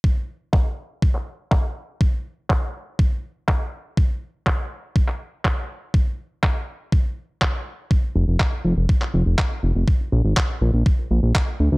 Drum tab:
CP |----x----x--x---|----x-------x---|----x----x--x---|----x-------x---|
BD |o---o---o---o---|o---o---o---o---|o---o---o---o---|o---o---o---o---|

CP |----x----x--x---|----x-------x---|
BD |o---o---o---o---|o---o---o---o---|